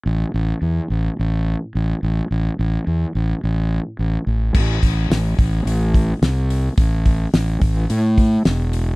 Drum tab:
CC |--------|--------|x-------|--------|
HH |--------|--------|-ooooooo|oooooooo|
SD |--------|--------|--o---o-|--o---o-|
BD |--------|--------|oo-o-o--|oo-o-o--|